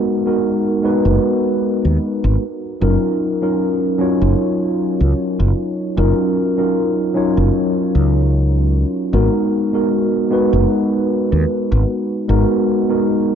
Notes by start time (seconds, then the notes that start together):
Already playing: G#3 B3 D#4 F#4 A#4
0.26 G#3 B3 D#4 F#4 A#4
0.83 G#3 B3 D#4 F#4 B4
1.05 F#1
1.85 D#2
2.24 G#1
2.81 F#1 F#3 C#4 D#4 F4 A#4
3.41 F#3 C#4 D#4 F4 A#4
3.98 F#3 C#4 D#4 F4 C#5
4.21 F#1
5.00 C#2
5.40 F#1
5.97 F#1 F#3 C#4 D#4 F4 A#4
6.57 F#3 C#4 D#4 F4 A#4
7.14 F#3 C#4 D#4 F4 C#5
7.37 F#1
7.95 C#2
9.13 G#1 G#3 B3 D#4 F#4 A#4
9.73 G#3 B3 D#4 F#4 A#4
10.30 G#3 B3 D#4 F#4 B4
10.53 F#1
11.32 D#2
11.72 G#1
12.28 G#1 G#3 B3 D#4 F#4 A#4
12.89 G#3 B3 D#4 F#4 A#4